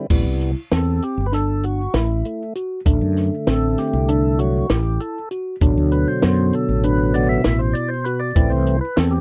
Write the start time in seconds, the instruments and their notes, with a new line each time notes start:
0.10 fretless electric bass A1, tonewheel organ C3 G3 B3, tine electric piano E4, kick, crash
0.26 fretless electric bass C2
0.41 closed hi-hat
0.72 fretless electric bass E2, tine electric piano C4, tonewheel organ A4, snare, closed hi-hat
1.02 tonewheel organ G4, closed hi-hat
1.17 fretless electric bass G1
1.26 tonewheel organ B4
1.32 tine electric piano D4, tonewheel organ A4, snare, closed hi-hat
1.63 tonewheel organ F#4, closed hi-hat
1.94 fretless electric bass A1, tine electric piano E4, tonewheel organ E4, snare, closed hi-hat
2.25 tonewheel organ A3, closed hi-hat
2.55 tine electric piano F#4, closed hi-hat
2.85 fretless electric bass A1, tonewheel organ D3 A3, tine electric piano D4, kick, closed hi-hat
3.01 fretless electric bass F#2
3.17 snare, closed hi-hat
3.47 fretless electric bass A1, tine electric piano C4, tonewheel organ A4, snare, closed hi-hat
3.78 tonewheel organ G4, snare, closed hi-hat
3.93 fretless electric bass C2
4.08 tine electric piano D4, tonewheel organ A4, closed hi-hat
4.39 tonewheel organ D3 F#3 A3 F#4, closed hi-hat
4.70 fretless electric bass A1, tine electric piano E4, tonewheel organ G4, snare, closed hi-hat
5.00 tonewheel organ A4, closed hi-hat
5.31 tine electric piano F#4, closed hi-hat
5.61 fretless electric bass A1, tonewheel organ B2 D3 F#3, tine electric piano D4, kick, closed hi-hat
5.77 fretless electric bass D2
5.92 tonewheel organ B4, closed hi-hat
6.08 tonewheel organ C5
6.22 fretless electric bass F#2, tine electric piano B3, snare, closed hi-hat
6.53 tonewheel organ A4, closed hi-hat
6.69 fretless electric bass A1
6.83 tine electric piano D4, tonewheel organ B4, closed hi-hat
7.14 tonewheel organ D3 F#3 B3 D5, closed hi-hat
7.29 tonewheel organ E5
7.44 fretless electric bass A1, tine electric piano E4, snare, closed hi-hat
7.59 tonewheel organ C5
7.73 tonewheel organ D5, closed hi-hat
7.88 tonewheel organ C5
8.04 tine electric piano F#4, tonewheel organ B4, closed hi-hat
8.19 tonewheel organ D5
8.35 fretless electric bass A1, tonewheel organ E3 A3 C4, tine electric piano E4, kick, closed hi-hat
8.50 fretless electric bass C2, tonewheel organ C5
8.66 closed hi-hat
8.81 tonewheel organ B4
8.96 fretless electric bass E2, tine electric piano C4, tonewheel organ A4, snare, closed hi-hat
9.11 tonewheel organ G4